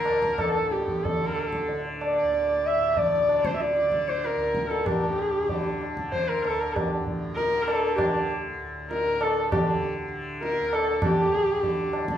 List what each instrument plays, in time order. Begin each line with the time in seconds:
Already playing: tanpura A2 D3, sarangi A#4, harmonium A#4
0.05 tanpura D2, tabla na
0.22 tabla ke
0.38 sarangi A4, tabla na, tabla ge
0.49 harmonium A#4
0.54 harmonium A4
0.60 tanpura A2
0.71 sarangi G4, tabla te
0.88 tabla ge
1.03 sarangi A4, tabla tin, tabla ge
1.16 tanpura D3
1.21 harmonium A4
1.36 tabla na
1.53 tabla ke
1.69 tanpura D3, tabla tin
2.01 sarangi D5, tabla na
2.17 harmonium D5
2.23 tanpura D2
2.33 tabla tin
2.66 sarangi E5
2.77 tanpura A2
2.97 sarangi D5, tabla tin, tabla ge
3.12 harmonium D5
3.28 tanpura D3, tabla na
3.45 sarangi C5, tabla ke
3.56 sarangi E5
3.60 sarangi D5, tabla te
3.76 harmonium D5, tabla te
3.82 tanpura D3
3.92 tabla ke
4.08 sarangi C5, tabla te
4.24 sarangi A#4, tabla te
4.36 tanpura D2, harmonium A#4, tabla te
4.55 tabla ke
4.71 sarangi A4, tabla te
4.86 tanpura A2, sarangi G4, tabla na, tabla ge
5.03 harmonium G4
5.41 tanpura D3
5.49 tabla tin, tabla ge
5.81 tabla na
5.95 tanpura D3, tabla ke
6.12 sarangi C5, tabla tin, tabla ge
6.29 sarangi A#4, harmonium C5
6.43 tanpura D2, sarangi A4, harmonium A#4, tabla na
6.60 sarangi A#4
6.76 sarangi G4, tabla na, tabla ge
6.87 harmonium G4 A4
7.00 tanpura A2
7.07 tabla ge
7.36 sarangi A#4, tabla te
7.52 tanpura D3, harmonium A#4
7.63 sarangi A4
7.68 tabla na
7.95 sarangi G4, tabla na, tabla ge
8.04 tanpura D3
8.14 harmonium G4
8.56 tanpura D2
8.91 sarangi A#4, tabla te
9.06 tanpura A2, harmonium A#4
9.21 sarangi A4, tabla na
9.36 harmonium A4
9.51 sarangi G4, tabla na, tabla ge
9.58 tanpura D3
10.08 tanpura D3
10.43 sarangi A#4, tabla te
10.58 tanpura D2, harmonium A#4
10.73 sarangi A4, tabla na
10.89 harmonium A4
11.02 tanpura A2, sarangi G4, tabla na, tabla ge
11.19 harmonium G4
11.54 tanpura D3
11.63 tabla tin, tabla ge
11.93 tabla na
12.04 tanpura D3
12.08 tabla ke